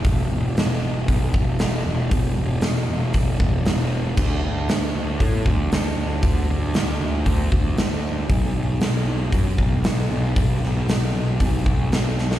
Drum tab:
CC |----------------|----------------|x---------------|----------------|
HH |o---o---o---o---|o---o---o---o---|----o---o---o---|o---o---o---o---|
SD |----o-------o---|----o-------o---|----o-------o---|----o-------o---|
BD |o-------o-o-----|o-------o-o-----|o-------o-o-----|o-------o-o-----|

CC |----------------|----------------|
HH |o---o---o---o---|o---o---o---o---|
SD |----o-------o---|--o-o-------o-oo|
BD |o-------o-o-----|o-------o-o-----|